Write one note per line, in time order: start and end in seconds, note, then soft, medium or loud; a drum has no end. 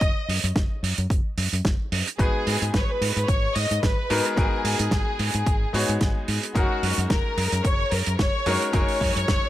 0.00 0.10 F#1 medium
0.00 0.28 D#5 loud
0.00 kick loud
0.00 closed hi-hat medium
0.28 0.38 F#2 medium
0.28 open hi-hat loud
0.44 0.51 F#2 medium
0.44 closed hi-hat medium
0.56 0.65 F#1 medium
0.56 kick loud
0.56 snare loud
0.56 closed hi-hat medium
0.83 0.92 F#2 medium
0.83 open hi-hat loud
0.98 1.06 F#2 medium
0.98 closed hi-hat medium
1.10 1.20 F#1 medium
1.10 kick loud
1.10 closed hi-hat medium
1.38 1.47 F#2 medium
1.38 open hi-hat loud
1.53 1.60 F#2 medium
1.53 closed hi-hat medium
1.65 1.74 F#1 medium
1.65 kick loud
1.65 snare loud
1.65 closed hi-hat medium
1.92 2.01 F#2 medium
1.92 open hi-hat loud
2.07 closed hi-hat medium
2.18 2.29 G#1 medium
2.18 4.07 G#3 medium
2.18 4.07 B3 medium
2.18 4.07 D#4 medium
2.18 4.08 F#4 medium
2.18 2.70 G#4 medium
2.18 4.08 B4 medium
2.18 kick loud
2.18 closed hi-hat medium
2.47 2.56 G#2 medium
2.47 open hi-hat loud
2.62 2.69 G#2 medium
2.62 closed hi-hat medium
2.74 2.83 G#1 medium
2.74 2.81 B4 medium
2.74 kick loud
2.74 snare loud
2.74 closed hi-hat medium
2.81 2.89 C#5 medium
2.89 3.28 B4 medium
3.01 3.11 G#2 medium
3.01 open hi-hat loud
3.16 3.24 G#2 medium
3.16 closed hi-hat medium
3.28 3.46 G#1 medium
3.28 3.56 C#5 loud
3.28 kick loud
3.28 closed hi-hat medium
3.55 3.65 G#2 loud
3.55 3.83 D#5 loud
3.55 open hi-hat loud
3.71 3.78 G#2 medium
3.71 closed hi-hat medium
3.83 3.92 G#1 medium
3.83 4.34 B4 loud
3.83 kick loud
3.83 snare loud
3.83 closed hi-hat medium
4.10 4.20 G#2 medium
4.10 4.34 G#3 medium
4.10 4.35 B3 medium
4.10 4.35 D#4 medium
4.10 4.35 F#4 medium
4.10 4.35 A#4 loud
4.10 open hi-hat loud
4.25 closed hi-hat medium
4.36 4.47 G#1 medium
4.36 5.70 G#3 medium
4.36 5.71 B3 medium
4.36 5.71 D#4 medium
4.36 5.71 F#4 medium
4.36 6.29 G#4 medium
4.36 5.72 A#4 loud
4.36 kick loud
4.36 closed hi-hat medium
4.65 4.74 G#2 medium
4.65 open hi-hat loud
4.79 4.87 G#2 medium
4.79 closed hi-hat medium
4.91 5.01 G#1 medium
4.91 kick loud
4.91 snare loud
4.91 closed hi-hat medium
5.19 5.29 G#2 medium
5.19 open hi-hat loud
5.34 5.42 G#2 medium
5.34 closed hi-hat medium
5.47 5.65 G#1 medium
5.47 kick loud
5.47 closed hi-hat medium
5.73 5.83 G#2 loud
5.73 6.52 G#3 medium
5.73 6.53 B3 medium
5.73 6.53 D#4 medium
5.73 6.53 F#4 medium
5.73 6.53 C#5 medium
5.73 open hi-hat loud
5.89 5.96 G#2 medium
5.89 closed hi-hat medium
6.01 6.10 G#1 medium
6.01 kick loud
6.01 snare loud
6.01 closed hi-hat medium
6.28 6.38 G#2 medium
6.28 open hi-hat loud
6.43 closed hi-hat medium
6.55 6.65 F#1 medium
6.55 8.43 G#3 medium
6.55 8.43 C#4 medium
6.55 8.44 D#4 medium
6.55 7.06 F#4 loud
6.55 8.44 F#4 medium
6.55 8.44 A#4 medium
6.55 kick loud
6.55 closed hi-hat medium
6.83 6.92 F#2 medium
6.83 open hi-hat loud
6.98 7.05 F#2 medium
6.98 closed hi-hat medium
7.10 7.20 F#1 medium
7.10 7.65 A#4 loud
7.10 kick loud
7.10 snare loud
7.10 closed hi-hat medium
7.37 7.47 F#2 medium
7.37 open hi-hat loud
7.52 7.60 F#2 medium
7.52 closed hi-hat medium
7.64 7.83 F#1 medium
7.64 7.92 C#5 loud
7.64 kick loud
7.64 closed hi-hat medium
7.91 8.01 F#2 loud
7.91 8.19 A#4 loud
7.91 open hi-hat medium
8.06 8.15 F#2 medium
8.06 closed hi-hat medium
8.18 8.29 F#1 medium
8.18 8.69 C#5 loud
8.18 kick loud
8.18 snare loud
8.18 closed hi-hat medium
8.46 8.56 F#2 medium
8.46 8.71 G#3 medium
8.46 8.71 C#4 medium
8.46 8.71 D#4 medium
8.46 8.71 F#4 medium
8.46 8.71 A#4 loud
8.46 open hi-hat loud
8.62 closed hi-hat medium
8.73 8.83 F#1 loud
8.73 9.49 G#3 medium
8.73 9.49 C#4 medium
8.73 9.49 D#4 medium
8.73 9.49 F#4 medium
8.73 9.49 A#4 loud
8.73 9.49 C#5 loud
8.73 kick loud
8.73 closed hi-hat medium
8.88 open hi-hat medium
9.01 9.10 F#2 medium
9.01 kick medium
9.01 open hi-hat loud
9.16 9.24 F#2 medium
9.16 closed hi-hat medium
9.28 9.38 F#1 medium
9.28 kick loud
9.28 snare loud
9.28 closed hi-hat medium